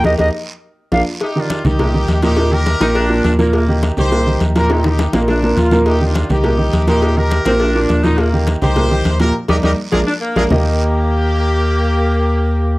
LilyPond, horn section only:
\new Staff \with { instrumentName = "Horn section" } { \time 4/4 \key ees \major \tempo 4 = 207 r1 | \tuplet 3/2 { <ees' g'>4 <d' f'>8~ } <d' f'>8 <ees' g'>2 <ees' g'>8~ | <ees' g'>8 <g' bes'>2. r8 | r4. <g' c''>4. r8 <g' bes'>8 |
<ees' g'>8 <ees' g'>4. r2 | \tuplet 3/2 { <ees' g'>4 <d' f'>8~ } <d' f'>8 <ees' g'>2 <ees' g'>8~ | <ees' g'>8 <g' bes'>2. r8 | r4. <g' c''>2 <g' bes'>8 |
r8 <ees' g' bes'>8 <ees' g' bes'>8 r8 <f' aes' bes'>8 r4 <f' aes' bes'>8 | g'1~ | g'1 | }